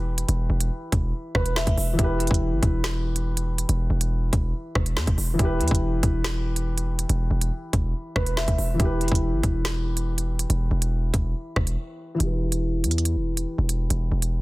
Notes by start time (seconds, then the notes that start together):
Already playing: E1 E3 E4 G4 B4
0.18 closed hi-hat
0.28 E1, closed hi-hat
0.50 E1
0.60 closed hi-hat
0.92 E1, kick, closed hi-hat
1.35 E1 B4, kick, cross-stick
1.46 closed hi-hat
1.56 E5, snare
1.67 E1, kick, closed hi-hat
1.77 E1, open hi-hat
1.93 E3 E4
1.99 E1 G4, kick, closed hi-hat
2.04 B4
2.20 closed hi-hat
2.27 E1, kick, closed hi-hat
2.34 closed hi-hat
2.52 G1
2.63 E1, kick, closed hi-hat
2.84 snare
3.16 closed hi-hat
3.37 closed hi-hat
3.58 closed hi-hat
3.69 E1, closed hi-hat
3.90 E1
4.01 closed hi-hat
4.33 E1, kick, closed hi-hat
4.75 E1, kick, cross-stick
4.86 closed hi-hat
4.97 E2, snare
5.07 E1, kick, closed hi-hat
5.18 E1, open hi-hat
5.34 E3 E4
5.39 E1 G4, kick, closed hi-hat
5.45 B4
5.60 E2, closed hi-hat
5.68 E1, kick, closed hi-hat
5.75 closed hi-hat
6.03 E1, kick, closed hi-hat
6.24 snare
6.56 closed hi-hat
6.78 closed hi-hat
6.99 closed hi-hat
7.09 E1, closed hi-hat
7.31 E1
7.41 closed hi-hat
7.73 E1, kick, closed hi-hat
8.16 E1 B4, kick, cross-stick
8.26 closed hi-hat
8.37 E5, snare
8.48 E1, kick, closed hi-hat
8.58 E1, open hi-hat
8.74 E3 E4
8.80 E1 G4, kick, closed hi-hat
8.85 B4
9.01 closed hi-hat
9.08 E1, kick, closed hi-hat
9.15 closed hi-hat
9.33 G1
9.43 E1, kick, closed hi-hat
9.65 snare
9.97 closed hi-hat
10.18 closed hi-hat
10.39 closed hi-hat
10.50 E1, closed hi-hat
10.71 E1
10.82 closed hi-hat
11.14 E1, kick, closed hi-hat
11.56 E1, kick, cross-stick
11.67 closed hi-hat
12.15 E3 E4
12.20 E1 G4, closed hi-hat
12.26 B4
12.52 closed hi-hat
12.84 E2, closed hi-hat
12.91 closed hi-hat
12.98 closed hi-hat
13.05 closed hi-hat
13.16 E1
13.37 closed hi-hat
13.58 E1
13.69 closed hi-hat
13.90 E1, closed hi-hat
14.12 E1
14.22 closed hi-hat